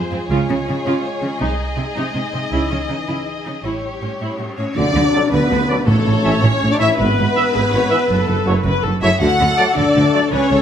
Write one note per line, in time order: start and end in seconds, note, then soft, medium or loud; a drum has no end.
0.00 2.36 G#3 medium
0.00 1.37 F4 medium
0.00 3.64 G#4 medium
0.00 0.30 C5 medium
0.12 0.19 F2 soft
0.12 0.20 C4 medium
0.30 0.47 C#2 medium
0.30 0.38 C#3 medium
0.30 0.47 F4 medium
0.30 1.39 C#5 medium
0.49 0.57 C#3 medium
0.49 0.57 G#3 soft
0.66 0.76 C#3 soft
0.66 0.73 C#4 soft
0.86 0.93 C#3 medium
0.86 1.03 F4 medium
1.22 1.29 C#3 soft
1.22 1.30 C#4 soft
1.39 1.58 C2 medium
1.39 1.47 C3 medium
1.39 1.58 D#4 medium
1.39 3.60 D#4 medium
1.39 3.63 D#5 medium
1.76 1.84 C3 soft
1.76 1.85 C4 soft
1.95 2.04 C3 medium
1.95 2.13 D#4 medium
2.13 2.22 C3 soft
2.13 2.21 G#3 soft
2.33 2.41 C3 soft
2.33 2.40 C4 soft
2.51 2.69 C#2 medium
2.51 2.59 C#3 medium
2.51 3.60 E3 soft
2.51 2.68 E4 medium
2.70 2.78 C#3 soft
2.70 2.78 C#4 soft
2.88 2.96 C#3 soft
2.88 2.96 D#4 soft
3.07 3.15 C#3 soft
3.07 3.25 E4 soft
3.46 3.54 C#3 soft
3.46 3.53 D#4 soft
3.64 3.81 A1 soft
3.64 3.73 A2 soft
3.64 4.55 G3 soft
3.64 4.55 C#4 soft
3.64 3.82 E4 soft
3.64 4.58 G4 soft
3.64 4.56 C#5 soft
4.02 4.09 A2 soft
4.02 4.10 C#4 soft
4.20 4.28 A2 soft
4.20 4.38 E4 soft
4.38 4.47 A2 soft
4.38 4.46 A3 soft
4.56 4.66 A2 soft
4.56 4.65 C#4 soft
4.56 4.76 C#4 medium
4.56 4.64 C#5 soft
4.56 4.75 C#5 medium
4.56 4.63 C#5 medium
4.74 4.84 D2 medium
4.74 4.84 D3 medium
4.74 5.30 D5 loud
4.74 5.32 D5 medium
4.74 tam-tam medium
4.78 5.33 D4 medium
4.78 5.32 D5 medium
4.94 5.02 D2 medium
4.94 5.03 D3 medium
5.13 5.20 F#3 medium
5.13 5.21 A3 medium
5.13 5.20 D5 medium
5.31 5.39 D2 medium
5.31 5.40 D2 medium
5.31 5.39 D3 medium
5.31 5.87 B3 medium
5.31 5.86 B4 medium
5.31 5.87 B4 medium
5.50 5.57 D2 medium
5.50 5.58 D2 medium
5.50 5.58 D3 medium
5.69 5.76 F#3 medium
5.69 5.76 A3 medium
5.69 5.76 D5 medium
5.86 5.95 A1 medium
5.86 5.94 A2 medium
5.86 6.39 A2 medium
5.86 6.44 A3 medium
5.86 6.42 A4 medium
5.86 6.95 C#5 medium
6.05 6.13 A1 medium
6.05 6.13 A2 medium
6.23 6.31 A1 medium
6.23 6.32 A1 medium
6.23 6.32 A2 medium
6.23 6.30 E3 medium
6.23 6.30 C#4 medium
6.23 6.31 E5 medium
6.42 6.51 A1 medium
6.42 6.50 A2 medium
6.42 6.71 C#4 medium
6.42 6.71 C#5 medium
6.42 6.72 C#5 medium
6.62 6.70 A1 medium
6.62 6.70 A2 medium
6.71 6.80 D4 medium
6.71 6.75 D5 medium
6.71 6.81 D5 medium
6.79 6.88 A1 medium
6.79 6.88 A2 medium
6.79 6.88 E3 medium
6.79 6.87 C#4 medium
6.79 6.98 E4 loud
6.79 6.86 E5 medium
6.79 6.99 E5 medium
6.79 6.88 E5 medium
6.79 6.99 E5 medium
6.98 7.07 G#1 medium
6.98 7.08 G#1 medium
6.98 7.06 G#2 medium
6.98 8.80 B3 loud
6.98 7.53 B4 medium
6.98 8.80 B4 loud
6.98 8.80 B4 medium
7.18 7.26 G#1 medium
7.18 7.25 G#2 medium
7.35 7.43 E3 medium
7.35 7.43 B3 medium
7.35 7.42 E5 medium
7.55 7.62 G#1 medium
7.55 7.62 G#2 medium
7.55 7.73 G#4 medium
7.72 7.80 G#1 medium
7.72 7.81 G#1 medium
7.72 7.80 G#2 medium
7.72 7.91 C#5 medium
7.90 7.97 E3 medium
7.90 7.97 B3 medium
7.90 8.09 B4 medium
7.90 7.97 E5 medium
8.08 8.17 F#1 medium
8.08 8.18 F#1 medium
8.08 8.16 F#2 medium
8.08 8.64 A4 medium
8.27 8.35 F#1 medium
8.27 8.36 F#1 medium
8.27 8.35 F#2 medium
8.45 8.54 F#1 medium
8.45 8.52 F#2 medium
8.45 8.52 F#3 medium
8.45 8.53 A3 medium
8.45 8.54 C#5 medium
8.64 8.72 F#1 medium
8.64 8.71 F#2 medium
8.64 8.83 B4 medium
8.83 8.91 F#1 medium
8.83 8.90 F#2 medium
8.83 9.02 A4 medium
9.01 9.10 F#1 medium
9.01 9.10 F#2 medium
9.01 9.08 F#3 medium
9.01 9.09 A3 medium
9.01 9.11 E4 loud
9.01 9.20 G#4 medium
9.01 9.08 C#5 medium
9.01 9.19 E5 medium
9.01 9.20 E5 medium
9.20 9.28 D2 medium
9.20 9.29 D3 medium
9.20 9.76 F#4 medium
9.20 10.32 A4 medium
9.20 9.76 F#5 medium
9.20 9.77 F#5 medium
9.40 9.47 D2 medium
9.40 9.47 D3 medium
9.57 9.66 F#3 medium
9.57 9.65 A3 medium
9.57 9.64 D5 medium
9.75 9.84 D2 medium
9.75 9.85 D2 medium
9.75 9.84 D3 medium
9.75 10.30 D4 medium
9.75 10.31 D5 medium
9.95 10.02 D2 medium
9.95 10.02 D3 medium
10.13 10.20 F#3 medium
10.13 10.20 A3 medium
10.13 10.20 D5 medium
10.30 10.39 C#2 medium
10.30 10.39 C#3 medium
10.30 10.62 C#4 loud
10.30 10.50 B4 medium
10.30 10.62 C#5 medium
10.50 10.58 C#2 medium
10.50 10.57 C#3 medium
10.50 10.62 A4 medium